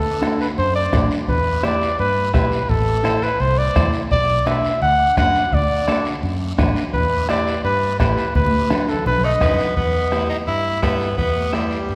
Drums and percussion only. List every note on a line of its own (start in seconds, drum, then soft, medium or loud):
0.23 bombo rim medium
0.23 high conga medium
0.23 short guiro medium
0.41 short guiro medium
0.58 high conga soft
0.58 long guiro medium
0.93 bombo low medium
0.93 bombo rim medium
0.93 high conga medium
0.93 low conga medium
0.93 short guiro medium
1.11 short guiro medium
1.28 bombo low medium
1.28 high conga soft
1.28 long guiro medium
1.63 bombo rim medium
1.63 high conga medium
1.63 short guiro medium
1.82 short guiro medium
1.99 high conga soft
1.99 long guiro medium
2.34 bombo low loud
2.34 bombo rim medium
2.34 high conga medium
2.34 short guiro medium
2.52 short guiro medium
2.69 bombo low medium
2.69 high conga soft
2.69 long guiro medium
3.05 bombo rim medium
3.05 high conga medium
3.05 short guiro medium
3.22 short guiro medium
3.40 high conga soft
3.40 long guiro medium
3.75 bombo low loud
3.75 bombo rim medium
3.75 high conga medium
3.75 low conga medium
3.75 short guiro medium
3.93 short guiro medium
4.11 bombo low medium
4.11 long guiro medium
4.47 bombo rim medium
4.47 high conga medium
4.47 short guiro medium
4.64 short guiro medium
4.82 high conga soft
4.82 long guiro medium
5.17 bombo low medium
5.17 bombo rim medium
5.17 high conga medium
5.17 short guiro medium
5.35 short guiro medium
5.52 bombo low medium
5.52 high conga soft
5.52 long guiro medium
5.88 bombo rim medium
5.88 high conga medium
5.88 short guiro medium
6.05 short guiro medium
6.23 high conga soft
6.23 long guiro medium
6.58 bombo low loud
6.58 bombo rim loud
6.58 high conga medium
6.58 low conga medium
6.58 short guiro medium
6.76 short guiro medium
6.94 bombo low medium
6.94 high conga soft
6.94 long guiro medium
7.29 bombo rim medium
7.29 high conga medium
7.29 short guiro medium
7.47 short guiro medium
7.65 high conga soft
7.65 long guiro medium
8.00 bombo low medium
8.00 bombo rim medium
8.00 high conga medium
8.00 short guiro medium
8.18 short guiro medium
8.35 bombo low medium
8.35 high conga medium
8.35 long guiro medium
8.47 high conga medium
8.70 bombo rim medium
8.70 low conga loud
8.70 short guiro medium
8.89 short guiro medium
8.94 low conga medium
9.06 low conga loud
9.06 long guiro medium
9.18 low conga medium
9.41 bombo low loud
9.41 bombo rim medium
9.41 low conga medium
9.41 short guiro medium
9.54 low conga loud
9.59 short guiro medium
9.66 low conga medium
9.77 bombo low medium
9.77 long guiro medium
10.12 bombo rim medium
10.12 high conga medium
10.12 short guiro medium
10.30 short guiro medium
10.47 long guiro medium
10.83 bombo low medium
10.83 bombo rim medium
10.83 high conga medium
10.83 short guiro medium
11.00 short guiro medium
11.18 bombo low medium
11.18 long guiro medium
11.36 high conga medium
11.53 bombo rim medium
11.53 high conga medium
11.53 short guiro medium
11.71 short guiro medium
11.89 long guiro medium